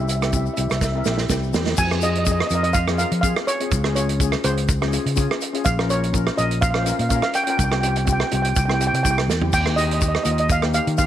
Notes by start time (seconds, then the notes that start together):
Already playing: C2 C4 E4 G4
0.01 E5
0.09 E5, closed hi-hat, shaker
0.16 E5
0.21 C4 E4 G4 E5, cross-stick, closed hi-hat, shaker
0.30 C4 E4 G4 E5, kick, closed hi-hat, shaker
0.37 E5
0.45 E5, shaker
0.54 C4 E4 E5, closed hi-hat, shaker
0.58 C2 G4 E5
0.70 C2 E5, cross-stick, closed hi-hat, shaker
0.76 E5
0.81 E5, kick, snare, shaker
0.92 C4 E4 A#4 E5
0.98 E5
1.05 A#1 C4 E4 G4 E5, snare, shaker
1.12 E5
1.18 snare, shaker
1.29 C2 C4 E4 G4, kick, snare, shaker
1.43 shaker
1.53 E2 C4 E4 G4, snare, shaker
1.66 snare, shaker
1.77 F2 G#5, kick, crash, shaker
1.91 C4 F4 G#4, cross-stick
2.01 C4 F4 G#4 D#5, closed hi-hat, shaker
2.10 D#5
2.15 D#5, closed hi-hat
2.25 C4 F4 G#4 D#5, kick, closed hi-hat, shaker
2.32 D#5
2.40 D#5, cross-stick
2.47 F2 D#5, closed hi-hat, shaker
2.51 C4 F4 A#4 D#5
2.63 D#5, closed hi-hat
2.73 F5, kick, closed hi-hat, shaker
2.88 C4 F4 G#4, cross-stick
2.98 C4 F4 A#4 F5, closed hi-hat, shaker
3.12 F3, closed hi-hat
3.21 C4 F4 G#4 F5, kick, closed hi-hat, shaker
3.36 cross-stick
3.47 C#5, closed hi-hat, shaker
3.60 C4 F4 G#4, closed hi-hat
3.71 C#2, kick, closed hi-hat, shaker
3.84 C#4 F4 G#4, cross-stick
3.95 C#4 F4 G#4 C#5, closed hi-hat, shaker
4.09 closed hi-hat
4.20 C#4 F4 G#4, kick, closed hi-hat, shaker
4.32 cross-stick
4.44 C#2 C#4 F4 G#4 C5, closed hi-hat, shaker
4.57 closed hi-hat
4.68 kick, closed hi-hat, shaker
4.81 C#4 F4 G#4, cross-stick
4.92 C#4 F4 G#4, closed hi-hat, shaker
5.06 C#3, closed hi-hat
5.16 C#4 F4 G#4, kick, closed hi-hat, shaker
5.31 cross-stick
5.41 closed hi-hat, shaker
5.53 C#4 F4 G#4, closed hi-hat
5.65 A#1 F5, kick, closed hi-hat, shaker
5.77 C#4 F4 A#4, cross-stick
5.88 C#4 F4 A#4 C#5, closed hi-hat, shaker
6.04 closed hi-hat
6.13 C#4 F4 A#4, kick, closed hi-hat, shaker
6.27 cross-stick
6.37 A#1 C#4 F4 A#4 D#5, closed hi-hat, shaker
6.51 closed hi-hat
6.61 F5, kick, closed hi-hat, shaker
6.71 C#4 F5, cross-stick
6.75 F4 C5 F5
6.85 C#4 F4 A#4 F5, closed hi-hat, shaker
6.92 F5
6.99 A#2 F5, closed hi-hat
7.09 C#4 F4 A#4 F5, kick, closed hi-hat, shaker
7.16 F5
7.22 F5, cross-stick
7.34 G5, closed hi-hat, shaker
7.44 C#4 F4 G5, closed hi-hat
7.49 A#4 G5
7.58 C2 G5, kick, closed hi-hat, shaker
7.64 G5
7.71 C4 F4 G4 G5, cross-stick
7.81 C4 F4 G4 G5, closed hi-hat, shaker
7.96 G5, closed hi-hat
8.06 C4 F4 G4 G5, kick, closed hi-hat, shaker
8.13 G5
8.20 G5, cross-stick
8.27 C4 G5
8.31 C2 F4 G4 G5, closed hi-hat
8.42 G5, closed hi-hat
8.49 G5
8.56 C2 G5, kick, closed hi-hat, shaker
8.65 C4 E4 G4 G5
8.70 cross-stick
8.74 G5
8.80 C4 E4 G4 G5, closed hi-hat, shaker
8.87 G5
8.93 C3 G5, closed hi-hat
9.03 C2 C4 E4 G4 G5, kick, closed hi-hat, shaker
9.11 G5
9.18 cross-stick
9.28 E2, snare, shaker
9.41 C4 E4 G4, floor tom
9.53 D#2 G5, kick, closed hi-hat, crash, shaker
9.65 A#3 D#4 G4, cross-stick
9.76 A#3 D#4 G4 D#5, closed hi-hat, shaker
9.91 D#5, closed hi-hat
10.00 A#3 D#4 G4 D#5, kick, closed hi-hat, shaker
10.08 D#5
10.15 D#5, cross-stick
10.23 D#2 A#3 D#4 F4 D#5, closed hi-hat, shaker
10.31 D#5
10.38 D#5, closed hi-hat
10.49 F5, kick, closed hi-hat, shaker
10.62 A#3 D#4 G4, cross-stick
10.73 A#3 D#4 G4 F5, closed hi-hat, shaker
10.87 D#3, closed hi-hat
10.98 A#3 D#4 G4 F5, kick, closed hi-hat, shaker